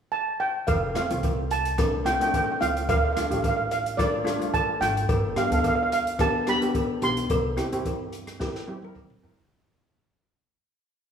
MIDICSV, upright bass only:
0, 0, Header, 1, 2, 480
1, 0, Start_track
1, 0, Key_signature, -1, "major"
1, 0, Tempo, 552486
1, 586, Time_signature, 4, 2, 24, 8
1, 9658, End_track
2, 0, Start_track
2, 0, Title_t, "Upright bass"
2, 0, Program_c, 0, 32
2, 595, Note_on_c, 0, 29, 86
2, 814, Note_off_c, 0, 29, 0
2, 961, Note_on_c, 0, 36, 69
2, 1883, Note_off_c, 0, 36, 0
2, 2266, Note_on_c, 0, 37, 69
2, 2489, Note_off_c, 0, 37, 0
2, 2511, Note_on_c, 0, 38, 89
2, 2731, Note_off_c, 0, 38, 0
2, 2876, Note_on_c, 0, 33, 69
2, 3799, Note_off_c, 0, 33, 0
2, 4176, Note_on_c, 0, 32, 81
2, 4402, Note_off_c, 0, 32, 0
2, 4425, Note_on_c, 0, 31, 96
2, 4646, Note_off_c, 0, 31, 0
2, 4784, Note_on_c, 0, 38, 72
2, 5711, Note_off_c, 0, 38, 0
2, 6100, Note_on_c, 0, 35, 76
2, 6323, Note_off_c, 0, 35, 0
2, 6345, Note_on_c, 0, 36, 85
2, 6566, Note_off_c, 0, 36, 0
2, 6713, Note_on_c, 0, 43, 64
2, 7636, Note_off_c, 0, 43, 0
2, 8026, Note_on_c, 0, 43, 74
2, 8247, Note_off_c, 0, 43, 0
2, 9658, End_track
0, 0, End_of_file